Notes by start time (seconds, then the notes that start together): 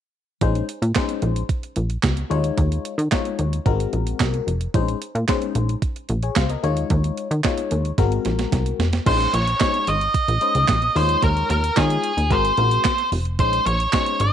0.41 A#1 G#3 C#4 D#4 C5, kick, closed hi-hat
0.55 closed hi-hat
0.69 closed hi-hat
0.82 A#2, closed hi-hat
0.95 G#3 C#4 D#4 C5, kick, snare, clap, closed hi-hat
1.09 closed hi-hat
1.22 A#1, closed hi-hat
1.36 closed hi-hat
1.49 kick, closed hi-hat
1.63 closed hi-hat
1.76 A#1, closed hi-hat
1.90 closed hi-hat
2.03 C#2, kick, snare, clap, closed hi-hat
2.17 closed hi-hat
2.30 D#2 G#3 D#4 F4 C#5, closed hi-hat
2.44 closed hi-hat
2.58 D#2, kick, closed hi-hat
2.72 closed hi-hat
2.85 closed hi-hat
2.98 D#3, closed hi-hat
3.11 G#3 D#4 F4 C#5, kick, snare, clap, closed hi-hat
3.25 closed hi-hat
3.39 D#2, closed hi-hat
3.53 closed hi-hat
3.65 G#1 G#3 C4 F#4 A#4, kick, closed hi-hat
3.80 closed hi-hat
3.93 A#1, closed hi-hat
4.07 closed hi-hat
4.20 C2, kick, snare, clap, closed hi-hat
4.34 closed hi-hat
4.47 F1, closed hi-hat
4.61 closed hi-hat
4.74 A#1 G#3 C#4 D#4 C5, kick, closed hi-hat
4.88 closed hi-hat
5.02 closed hi-hat
5.15 A#2, closed hi-hat
5.28 G#3 C#4 D#4 C5, kick, snare, clap, closed hi-hat
5.42 closed hi-hat
5.55 A#1, closed hi-hat
5.69 closed hi-hat
5.82 kick, closed hi-hat
5.96 closed hi-hat
6.09 A#1, closed hi-hat
6.23 G#4 C#5, closed hi-hat
6.36 C#2 C5 F5, kick, snare, clap, closed hi-hat
6.50 A#4 D#5, closed hi-hat
6.63 D#2 G#3 D#4 F4 C#5, closed hi-hat
6.77 closed hi-hat
6.90 D#2, kick, closed hi-hat
7.04 closed hi-hat
7.18 closed hi-hat
7.31 D#3, closed hi-hat
7.44 G#3 D#4 F4 C#5, kick, snare, clap, closed hi-hat
7.58 closed hi-hat
7.71 D#2, closed hi-hat
7.85 closed hi-hat
7.98 G#1 G#3 C4 F#4 A#4, kick, snare, closed hi-hat
8.12 closed hi-hat
8.25 A#1, snare, closed hi-hat
8.39 snare, closed hi-hat
8.52 C2, kick, snare, closed hi-hat
8.66 closed hi-hat
8.79 F1, snare, closed hi-hat
8.93 snare, closed hi-hat
9.06 A#1 G#3 C#4 D#4 C5, kick, closed hi-hat, crash
9.20 closed hi-hat
9.34 A#1 C#5, closed hi-hat
9.48 closed hi-hat
9.60 G#3 C#4 D#4 C5 C#5, kick, snare, clap, closed hi-hat
9.74 closed hi-hat
9.87 G#1 D#5, closed hi-hat
10.01 closed hi-hat
10.14 kick, closed hi-hat
10.28 A#1, closed hi-hat
10.41 G#3 C#4 D#4 C5, closed hi-hat
10.55 C#2, closed hi-hat
10.68 A#1, kick, snare, clap, closed hi-hat
10.82 closed hi-hat
10.95 D#2 G#3 D#4 F4 C5 C#5, open hi-hat
11.09 closed hi-hat
11.23 D#2 A#4, kick, closed hi-hat
11.37 closed hi-hat
11.50 D#2 A#4, closed hi-hat
11.64 closed hi-hat
11.76 D#3 G#3 D#4 F4 G#4 C#5, kick, snare, clap, closed hi-hat
11.90 closed hi-hat
12.04 closed hi-hat
12.17 D#2, closed hi-hat
12.30 G#1 G#3 C4 F#4 A#4 C5, kick, closed hi-hat
12.45 closed hi-hat
12.57 A#1 G#3 C4 F#4 A#4, closed hi-hat
12.71 closed hi-hat
12.84 kick, snare, clap, closed hi-hat
12.98 closed hi-hat
13.12 F1, open hi-hat
13.25 closed hi-hat
13.39 A#1 G#3 C#4 D#4 C5, kick, closed hi-hat
13.53 closed hi-hat
13.66 A#1 C#5, closed hi-hat
13.80 closed hi-hat
13.93 G#3 C#4 D#4 C5 C#5, kick, snare, clap, closed hi-hat
14.06 closed hi-hat
14.20 G#1 D#5, closed hi-hat